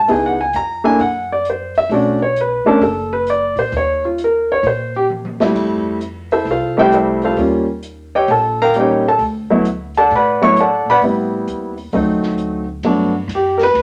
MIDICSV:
0, 0, Header, 1, 5, 480
1, 0, Start_track
1, 0, Tempo, 455927
1, 93, Time_signature, 4, 2, 24, 8
1, 14550, End_track
2, 0, Start_track
2, 0, Title_t, "Grand piano"
2, 0, Program_c, 0, 0
2, 85, Note_on_c, 0, 59, 55
2, 87, Note_on_c, 0, 63, 53
2, 92, Note_on_c, 0, 64, 54
2, 96, Note_on_c, 0, 68, 63
2, 121, Note_on_c, 0, 80, 69
2, 262, Note_off_c, 0, 80, 0
2, 274, Note_on_c, 0, 78, 75
2, 372, Note_off_c, 0, 59, 0
2, 372, Note_off_c, 0, 63, 0
2, 375, Note_off_c, 0, 64, 0
2, 377, Note_off_c, 0, 68, 0
2, 418, Note_off_c, 0, 78, 0
2, 428, Note_on_c, 0, 80, 67
2, 575, Note_off_c, 0, 80, 0
2, 589, Note_on_c, 0, 82, 92
2, 884, Note_on_c, 0, 58, 65
2, 884, Note_on_c, 0, 62, 58
2, 885, Note_off_c, 0, 82, 0
2, 889, Note_on_c, 0, 64, 58
2, 890, Note_on_c, 0, 69, 68
2, 898, Note_on_c, 0, 80, 79
2, 1033, Note_off_c, 0, 58, 0
2, 1034, Note_off_c, 0, 62, 0
2, 1036, Note_off_c, 0, 64, 0
2, 1037, Note_off_c, 0, 69, 0
2, 1052, Note_off_c, 0, 80, 0
2, 1061, Note_on_c, 0, 78, 72
2, 1361, Note_off_c, 0, 78, 0
2, 1394, Note_on_c, 0, 74, 74
2, 1540, Note_off_c, 0, 74, 0
2, 1575, Note_on_c, 0, 72, 59
2, 1858, Note_off_c, 0, 72, 0
2, 1869, Note_on_c, 0, 76, 94
2, 2014, Note_on_c, 0, 57, 51
2, 2017, Note_off_c, 0, 76, 0
2, 2017, Note_on_c, 0, 61, 52
2, 2018, Note_on_c, 0, 62, 54
2, 2029, Note_on_c, 0, 66, 60
2, 2047, Note_on_c, 0, 74, 60
2, 2295, Note_off_c, 0, 57, 0
2, 2296, Note_off_c, 0, 61, 0
2, 2297, Note_off_c, 0, 62, 0
2, 2302, Note_off_c, 0, 66, 0
2, 2334, Note_off_c, 0, 74, 0
2, 2340, Note_on_c, 0, 73, 73
2, 2492, Note_off_c, 0, 73, 0
2, 2534, Note_on_c, 0, 71, 73
2, 2799, Note_on_c, 0, 57, 73
2, 2802, Note_on_c, 0, 61, 67
2, 2806, Note_on_c, 0, 62, 68
2, 2812, Note_on_c, 0, 69, 84
2, 2817, Note_off_c, 0, 71, 0
2, 2823, Note_on_c, 0, 70, 65
2, 2950, Note_off_c, 0, 57, 0
2, 2951, Note_off_c, 0, 61, 0
2, 2953, Note_off_c, 0, 62, 0
2, 2956, Note_off_c, 0, 69, 0
2, 2973, Note_off_c, 0, 70, 0
2, 2980, Note_on_c, 0, 69, 69
2, 3279, Note_off_c, 0, 69, 0
2, 3293, Note_on_c, 0, 71, 76
2, 3448, Note_off_c, 0, 71, 0
2, 3472, Note_on_c, 0, 74, 78
2, 3765, Note_off_c, 0, 74, 0
2, 3777, Note_on_c, 0, 72, 76
2, 3930, Note_off_c, 0, 72, 0
2, 3965, Note_on_c, 0, 73, 83
2, 4251, Note_off_c, 0, 73, 0
2, 4265, Note_on_c, 0, 65, 55
2, 4413, Note_off_c, 0, 65, 0
2, 4465, Note_on_c, 0, 70, 68
2, 4741, Note_off_c, 0, 70, 0
2, 4756, Note_on_c, 0, 73, 86
2, 4899, Note_off_c, 0, 73, 0
2, 4914, Note_on_c, 0, 72, 69
2, 5205, Note_off_c, 0, 72, 0
2, 5226, Note_on_c, 0, 67, 83
2, 5317, Note_off_c, 0, 67, 0
2, 5687, Note_on_c, 0, 55, 62
2, 5688, Note_on_c, 0, 57, 58
2, 5694, Note_on_c, 0, 60, 57
2, 5703, Note_on_c, 0, 64, 68
2, 6294, Note_off_c, 0, 55, 0
2, 6295, Note_off_c, 0, 57, 0
2, 6298, Note_off_c, 0, 60, 0
2, 6302, Note_off_c, 0, 64, 0
2, 6654, Note_on_c, 0, 64, 57
2, 6655, Note_on_c, 0, 76, 77
2, 6657, Note_on_c, 0, 72, 64
2, 6663, Note_on_c, 0, 69, 62
2, 6806, Note_off_c, 0, 64, 0
2, 6807, Note_off_c, 0, 76, 0
2, 6808, Note_off_c, 0, 72, 0
2, 6811, Note_off_c, 0, 69, 0
2, 6852, Note_on_c, 0, 77, 74
2, 6853, Note_on_c, 0, 65, 56
2, 6853, Note_on_c, 0, 69, 52
2, 6859, Note_on_c, 0, 72, 57
2, 7128, Note_on_c, 0, 55, 74
2, 7133, Note_off_c, 0, 65, 0
2, 7133, Note_off_c, 0, 77, 0
2, 7134, Note_off_c, 0, 69, 0
2, 7135, Note_on_c, 0, 57, 68
2, 7136, Note_on_c, 0, 60, 67
2, 7137, Note_off_c, 0, 72, 0
2, 7148, Note_on_c, 0, 64, 81
2, 7151, Note_on_c, 0, 79, 89
2, 7159, Note_on_c, 0, 76, 70
2, 7165, Note_on_c, 0, 67, 68
2, 7165, Note_on_c, 0, 72, 78
2, 7290, Note_off_c, 0, 76, 0
2, 7293, Note_off_c, 0, 72, 0
2, 7295, Note_off_c, 0, 79, 0
2, 7297, Note_off_c, 0, 64, 0
2, 7302, Note_off_c, 0, 67, 0
2, 7306, Note_on_c, 0, 76, 67
2, 7309, Note_on_c, 0, 72, 58
2, 7312, Note_on_c, 0, 64, 58
2, 7318, Note_on_c, 0, 69, 52
2, 7600, Note_off_c, 0, 76, 0
2, 7601, Note_off_c, 0, 72, 0
2, 7603, Note_off_c, 0, 64, 0
2, 7606, Note_off_c, 0, 69, 0
2, 7624, Note_on_c, 0, 72, 58
2, 7627, Note_on_c, 0, 65, 57
2, 7632, Note_on_c, 0, 77, 74
2, 7635, Note_on_c, 0, 69, 61
2, 7734, Note_off_c, 0, 55, 0
2, 7738, Note_off_c, 0, 57, 0
2, 7738, Note_off_c, 0, 60, 0
2, 7758, Note_off_c, 0, 65, 0
2, 7758, Note_on_c, 0, 55, 52
2, 7771, Note_off_c, 0, 72, 0
2, 7771, Note_on_c, 0, 58, 47
2, 7772, Note_on_c, 0, 61, 49
2, 7774, Note_on_c, 0, 65, 58
2, 7775, Note_off_c, 0, 77, 0
2, 7777, Note_off_c, 0, 69, 0
2, 8043, Note_off_c, 0, 55, 0
2, 8049, Note_off_c, 0, 58, 0
2, 8050, Note_off_c, 0, 61, 0
2, 8051, Note_off_c, 0, 65, 0
2, 8582, Note_on_c, 0, 73, 68
2, 8583, Note_on_c, 0, 67, 66
2, 8583, Note_on_c, 0, 75, 73
2, 8590, Note_on_c, 0, 79, 84
2, 8730, Note_off_c, 0, 67, 0
2, 8730, Note_off_c, 0, 73, 0
2, 8731, Note_off_c, 0, 75, 0
2, 8734, Note_off_c, 0, 79, 0
2, 8748, Note_on_c, 0, 81, 73
2, 8757, Note_on_c, 0, 69, 66
2, 9040, Note_off_c, 0, 81, 0
2, 9045, Note_off_c, 0, 69, 0
2, 9073, Note_on_c, 0, 77, 79
2, 9073, Note_on_c, 0, 82, 99
2, 9074, Note_on_c, 0, 70, 74
2, 9077, Note_on_c, 0, 79, 73
2, 9211, Note_on_c, 0, 55, 53
2, 9215, Note_off_c, 0, 82, 0
2, 9216, Note_off_c, 0, 70, 0
2, 9216, Note_off_c, 0, 77, 0
2, 9218, Note_off_c, 0, 79, 0
2, 9219, Note_on_c, 0, 58, 49
2, 9226, Note_on_c, 0, 61, 50
2, 9229, Note_on_c, 0, 63, 57
2, 9261, Note_on_c, 0, 79, 75
2, 9263, Note_on_c, 0, 73, 62
2, 9264, Note_on_c, 0, 67, 61
2, 9272, Note_on_c, 0, 75, 59
2, 9490, Note_off_c, 0, 55, 0
2, 9494, Note_off_c, 0, 58, 0
2, 9497, Note_off_c, 0, 61, 0
2, 9499, Note_off_c, 0, 63, 0
2, 9537, Note_off_c, 0, 79, 0
2, 9538, Note_off_c, 0, 73, 0
2, 9539, Note_off_c, 0, 67, 0
2, 9543, Note_off_c, 0, 75, 0
2, 9563, Note_on_c, 0, 69, 69
2, 9564, Note_on_c, 0, 81, 87
2, 9701, Note_off_c, 0, 69, 0
2, 9701, Note_off_c, 0, 81, 0
2, 10005, Note_on_c, 0, 54, 72
2, 10008, Note_on_c, 0, 57, 65
2, 10015, Note_on_c, 0, 59, 67
2, 10017, Note_on_c, 0, 64, 76
2, 10150, Note_off_c, 0, 54, 0
2, 10151, Note_off_c, 0, 57, 0
2, 10154, Note_off_c, 0, 59, 0
2, 10156, Note_off_c, 0, 64, 0
2, 10501, Note_on_c, 0, 81, 92
2, 10507, Note_on_c, 0, 78, 66
2, 10509, Note_on_c, 0, 69, 65
2, 10510, Note_on_c, 0, 74, 68
2, 10649, Note_off_c, 0, 81, 0
2, 10653, Note_off_c, 0, 78, 0
2, 10654, Note_off_c, 0, 69, 0
2, 10654, Note_off_c, 0, 74, 0
2, 10691, Note_on_c, 0, 83, 83
2, 10693, Note_on_c, 0, 78, 62
2, 10695, Note_on_c, 0, 74, 64
2, 10696, Note_on_c, 0, 71, 71
2, 10964, Note_on_c, 0, 54, 63
2, 10970, Note_on_c, 0, 59, 59
2, 10972, Note_on_c, 0, 57, 59
2, 10973, Note_off_c, 0, 83, 0
2, 10974, Note_off_c, 0, 78, 0
2, 10975, Note_off_c, 0, 74, 0
2, 10976, Note_off_c, 0, 71, 0
2, 10976, Note_on_c, 0, 85, 101
2, 10981, Note_on_c, 0, 64, 75
2, 10988, Note_on_c, 0, 73, 77
2, 11109, Note_off_c, 0, 54, 0
2, 11112, Note_off_c, 0, 59, 0
2, 11114, Note_off_c, 0, 57, 0
2, 11118, Note_off_c, 0, 64, 0
2, 11128, Note_off_c, 0, 85, 0
2, 11133, Note_off_c, 0, 73, 0
2, 11159, Note_on_c, 0, 74, 60
2, 11161, Note_on_c, 0, 78, 63
2, 11163, Note_on_c, 0, 81, 78
2, 11169, Note_on_c, 0, 69, 55
2, 11447, Note_off_c, 0, 74, 0
2, 11448, Note_off_c, 0, 78, 0
2, 11449, Note_off_c, 0, 81, 0
2, 11452, Note_off_c, 0, 69, 0
2, 11473, Note_on_c, 0, 83, 97
2, 11479, Note_on_c, 0, 74, 75
2, 11482, Note_on_c, 0, 71, 78
2, 11483, Note_on_c, 0, 78, 77
2, 11562, Note_off_c, 0, 83, 0
2, 11566, Note_off_c, 0, 74, 0
2, 11568, Note_off_c, 0, 71, 0
2, 11569, Note_off_c, 0, 78, 0
2, 11609, Note_on_c, 0, 55, 53
2, 11616, Note_on_c, 0, 59, 51
2, 11618, Note_on_c, 0, 60, 48
2, 11622, Note_on_c, 0, 64, 58
2, 12339, Note_off_c, 0, 55, 0
2, 12343, Note_off_c, 0, 59, 0
2, 12343, Note_off_c, 0, 60, 0
2, 12345, Note_off_c, 0, 64, 0
2, 12561, Note_on_c, 0, 54, 57
2, 12568, Note_on_c, 0, 57, 55
2, 12573, Note_on_c, 0, 60, 52
2, 12578, Note_on_c, 0, 63, 66
2, 13295, Note_off_c, 0, 54, 0
2, 13299, Note_off_c, 0, 57, 0
2, 13302, Note_off_c, 0, 60, 0
2, 13304, Note_off_c, 0, 63, 0
2, 13522, Note_on_c, 0, 54, 55
2, 13528, Note_on_c, 0, 57, 50
2, 13533, Note_on_c, 0, 59, 49
2, 13538, Note_on_c, 0, 62, 58
2, 13808, Note_off_c, 0, 54, 0
2, 13811, Note_off_c, 0, 57, 0
2, 13813, Note_off_c, 0, 59, 0
2, 13816, Note_off_c, 0, 62, 0
2, 14054, Note_on_c, 0, 67, 74
2, 14292, Note_on_c, 0, 70, 66
2, 14314, Note_off_c, 0, 70, 0
2, 14337, Note_off_c, 0, 67, 0
2, 14351, Note_on_c, 0, 71, 99
2, 14550, Note_off_c, 0, 71, 0
2, 14550, End_track
3, 0, Start_track
3, 0, Title_t, "Upright bass"
3, 0, Program_c, 1, 32
3, 91, Note_on_c, 1, 37, 82
3, 537, Note_off_c, 1, 37, 0
3, 569, Note_on_c, 1, 41, 72
3, 1016, Note_off_c, 1, 41, 0
3, 1043, Note_on_c, 1, 42, 74
3, 1963, Note_off_c, 1, 42, 0
3, 1993, Note_on_c, 1, 35, 81
3, 2753, Note_off_c, 1, 35, 0
3, 2960, Note_on_c, 1, 30, 82
3, 3715, Note_off_c, 1, 30, 0
3, 3745, Note_on_c, 1, 46, 64
3, 3906, Note_off_c, 1, 46, 0
3, 3917, Note_on_c, 1, 39, 80
3, 4838, Note_off_c, 1, 39, 0
3, 4874, Note_on_c, 1, 46, 76
3, 5796, Note_off_c, 1, 46, 0
3, 5843, Note_on_c, 1, 41, 77
3, 6760, Note_off_c, 1, 41, 0
3, 6792, Note_on_c, 1, 36, 80
3, 7715, Note_off_c, 1, 36, 0
3, 7755, Note_on_c, 1, 39, 82
3, 8676, Note_off_c, 1, 39, 0
3, 8719, Note_on_c, 1, 34, 84
3, 9638, Note_off_c, 1, 34, 0
3, 9672, Note_on_c, 1, 38, 81
3, 10595, Note_off_c, 1, 38, 0
3, 10645, Note_on_c, 1, 45, 83
3, 11397, Note_off_c, 1, 45, 0
3, 11433, Note_on_c, 1, 46, 63
3, 11589, Note_off_c, 1, 46, 0
3, 11596, Note_on_c, 1, 45, 78
3, 12046, Note_off_c, 1, 45, 0
3, 12081, Note_on_c, 1, 39, 70
3, 12529, Note_off_c, 1, 39, 0
3, 12558, Note_on_c, 1, 38, 79
3, 13481, Note_off_c, 1, 38, 0
3, 13509, Note_on_c, 1, 43, 74
3, 13971, Note_off_c, 1, 43, 0
3, 13977, Note_on_c, 1, 42, 84
3, 14458, Note_off_c, 1, 42, 0
3, 14471, Note_on_c, 1, 38, 79
3, 14550, Note_off_c, 1, 38, 0
3, 14550, End_track
4, 0, Start_track
4, 0, Title_t, "Muted upright bass strokes"
4, 2786, Note_on_c, 9, 29, 37
4, 2892, Note_off_c, 9, 29, 0
4, 14550, End_track
5, 0, Start_track
5, 0, Title_t, "Drums"
5, 85, Note_on_c, 9, 46, 43
5, 190, Note_off_c, 9, 46, 0
5, 560, Note_on_c, 9, 42, 49
5, 665, Note_off_c, 9, 42, 0
5, 1045, Note_on_c, 9, 46, 41
5, 1151, Note_off_c, 9, 46, 0
5, 1526, Note_on_c, 9, 42, 51
5, 1631, Note_off_c, 9, 42, 0
5, 1842, Note_on_c, 9, 46, 37
5, 1948, Note_off_c, 9, 46, 0
5, 2009, Note_on_c, 9, 46, 43
5, 2115, Note_off_c, 9, 46, 0
5, 2487, Note_on_c, 9, 42, 51
5, 2593, Note_off_c, 9, 42, 0
5, 2966, Note_on_c, 9, 46, 43
5, 3071, Note_off_c, 9, 46, 0
5, 3439, Note_on_c, 9, 42, 51
5, 3544, Note_off_c, 9, 42, 0
5, 3755, Note_on_c, 9, 46, 38
5, 3860, Note_off_c, 9, 46, 0
5, 3917, Note_on_c, 9, 46, 43
5, 4022, Note_off_c, 9, 46, 0
5, 4403, Note_on_c, 9, 42, 49
5, 4509, Note_off_c, 9, 42, 0
5, 4882, Note_on_c, 9, 46, 42
5, 4987, Note_off_c, 9, 46, 0
5, 5369, Note_on_c, 9, 47, 42
5, 5474, Note_off_c, 9, 47, 0
5, 5527, Note_on_c, 9, 47, 52
5, 5632, Note_off_c, 9, 47, 0
5, 5687, Note_on_c, 9, 38, 78
5, 5793, Note_off_c, 9, 38, 0
5, 5847, Note_on_c, 9, 36, 68
5, 5849, Note_on_c, 9, 49, 71
5, 5952, Note_off_c, 9, 36, 0
5, 5955, Note_off_c, 9, 49, 0
5, 6326, Note_on_c, 9, 42, 48
5, 6431, Note_off_c, 9, 42, 0
5, 6644, Note_on_c, 9, 46, 36
5, 6750, Note_off_c, 9, 46, 0
5, 6809, Note_on_c, 9, 46, 44
5, 6914, Note_off_c, 9, 46, 0
5, 7285, Note_on_c, 9, 42, 50
5, 7390, Note_off_c, 9, 42, 0
5, 7597, Note_on_c, 9, 46, 36
5, 7703, Note_off_c, 9, 46, 0
5, 7757, Note_on_c, 9, 46, 45
5, 7863, Note_off_c, 9, 46, 0
5, 8240, Note_on_c, 9, 42, 49
5, 8346, Note_off_c, 9, 42, 0
5, 8715, Note_on_c, 9, 46, 42
5, 8820, Note_off_c, 9, 46, 0
5, 9200, Note_on_c, 9, 42, 52
5, 9306, Note_off_c, 9, 42, 0
5, 9678, Note_on_c, 9, 46, 42
5, 9783, Note_off_c, 9, 46, 0
5, 10160, Note_on_c, 9, 42, 54
5, 10266, Note_off_c, 9, 42, 0
5, 10471, Note_on_c, 9, 46, 38
5, 10576, Note_off_c, 9, 46, 0
5, 10640, Note_on_c, 9, 46, 43
5, 10745, Note_off_c, 9, 46, 0
5, 11122, Note_on_c, 9, 42, 50
5, 11228, Note_off_c, 9, 42, 0
5, 11599, Note_on_c, 9, 46, 46
5, 11705, Note_off_c, 9, 46, 0
5, 12083, Note_on_c, 9, 42, 53
5, 12188, Note_off_c, 9, 42, 0
5, 12398, Note_on_c, 9, 46, 38
5, 12503, Note_off_c, 9, 46, 0
5, 12556, Note_on_c, 9, 46, 42
5, 12661, Note_off_c, 9, 46, 0
5, 12874, Note_on_c, 9, 38, 35
5, 12979, Note_off_c, 9, 38, 0
5, 13033, Note_on_c, 9, 42, 50
5, 13138, Note_off_c, 9, 42, 0
5, 13509, Note_on_c, 9, 51, 58
5, 13614, Note_off_c, 9, 51, 0
5, 13994, Note_on_c, 9, 44, 58
5, 13994, Note_on_c, 9, 51, 66
5, 14099, Note_off_c, 9, 44, 0
5, 14099, Note_off_c, 9, 51, 0
5, 14311, Note_on_c, 9, 51, 46
5, 14314, Note_on_c, 9, 38, 52
5, 14416, Note_off_c, 9, 51, 0
5, 14419, Note_off_c, 9, 38, 0
5, 14477, Note_on_c, 9, 51, 60
5, 14550, Note_off_c, 9, 51, 0
5, 14550, End_track
0, 0, End_of_file